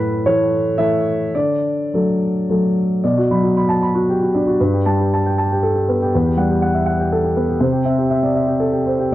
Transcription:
0.00 0.25 A2 soft
0.00 0.25 B4 medium
0.26 0.74 E3 soft
0.26 0.74 A3 soft
0.26 0.74 A4 soft
0.26 0.77 C#5 medium
0.78 1.30 E3 soft
0.78 1.30 A3 soft
0.78 1.31 A4 soft
0.78 1.34 E5 medium
1.35 1.91 D3 soft
1.35 2.48 D5 medium
1.94 2.45 F#3 soft
1.94 2.45 A3 soft
1.94 2.45 A4 soft
2.49 3.00 F#3 soft
2.49 3.00 A3 soft
2.49 3.00 A4 soft
3.04 4.56 B2 soft
3.04 3.24 D5 soft
3.18 3.38 F#4 soft
3.31 3.72 F#3 soft
3.31 3.51 B5 soft
3.43 3.64 F#4 soft
3.57 3.77 B5 soft
3.69 3.82 A5 soft
3.83 4.03 B5 soft
3.95 4.15 F#4 soft
4.09 4.21 G4 soft
4.22 4.42 F#4 soft
4.34 4.60 D4 soft
4.34 4.54 D5 soft
4.47 4.60 F#4 soft
4.60 6.10 G2 soft
4.60 4.81 B4 soft
4.74 4.94 G4 soft
4.86 5.27 G3 soft
4.86 5.07 A5 soft
5.00 5.20 G4 soft
5.14 5.33 A5 soft
5.26 5.38 G5 soft
5.38 5.58 A5 soft
5.52 5.71 G4 soft
5.63 5.76 A4 soft
5.75 5.96 G4 soft
5.88 6.14 B3 soft
5.88 6.08 B4 soft
6.02 6.14 G4 soft
6.14 7.58 E2 soft
6.14 6.33 B4 soft
6.25 6.45 G4 soft
6.37 6.76 G3 soft
6.37 6.57 F#5 soft
6.49 6.69 G4 soft
6.62 6.82 F#5 soft
6.74 6.86 E5 soft
6.86 7.06 F#5 soft
6.99 7.19 G4 soft
7.12 7.25 A4 soft
7.24 7.44 G4 soft
7.37 7.61 B3 soft
7.37 7.56 B4 soft
7.48 7.61 G4 soft
7.60 9.06 C3 medium
7.60 7.80 C5 soft
7.73 7.93 G4 soft
7.85 8.25 C4 soft
7.85 8.05 E5 soft
7.98 8.18 G4 soft
8.10 8.30 E5 soft
8.23 8.35 D5 soft
8.35 8.55 E5 soft
8.47 8.67 G4 soft
8.60 8.73 A4 soft
8.72 8.93 G4 soft
8.86 9.06 C5 soft
8.99 9.11 G4 soft

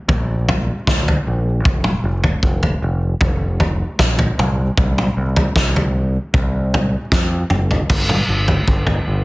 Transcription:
0.08 0.70 A#1 medium
0.08 kick loud
0.08 floor tom medium
0.49 floor tom medium
0.49 mid tom medium
0.87 1.18 D2 medium
0.87 kick loud
0.87 snare medium
0.87 mid tom medium
1.08 floor tom medium
1.27 1.66 A#1 medium
1.65 1.96 F1 medium
1.65 kick loud
1.65 floor tom medium
1.84 mid tom medium
2.04 2.35 F1 medium
2.24 floor tom medium
2.43 2.74 F1 medium
2.43 kick medium
2.63 floor tom medium
2.82 3.13 F1 medium
3.21 3.82 F1 medium
3.21 kick loud
3.21 floor tom medium
3.60 floor tom medium
3.99 4.30 A#1 medium
3.99 kick loud
3.99 snare medium
3.99 mid tom medium
4.19 floor tom medium
4.38 4.69 C2 medium
4.38 mid tom medium
4.78 5.08 C2 medium
4.78 kick loud
4.78 floor tom medium
4.98 mid tom medium
5.17 5.47 C2 medium
5.36 floor tom medium
5.56 6.17 C2 medium
5.56 kick medium
5.56 snare medium
5.76 floor tom medium
6.34 6.95 C2 medium
6.34 kick loud
6.34 floor tom medium
6.74 floor tom medium
6.74 mid tom medium
7.12 7.42 F2 medium
7.12 kick loud
7.12 snare medium
7.50 7.81 F#1 medium
7.50 mid tom medium
7.71 floor tom medium
7.90 8.21 G1 medium
7.90 kick loud
7.90 floor tom medium
7.90 crash medium
8.09 mid tom medium
8.29 8.59 G1 medium
8.48 floor tom medium
8.68 8.98 G1 medium
8.68 kick medium
8.87 floor tom medium
9.08 9.24 G1 medium

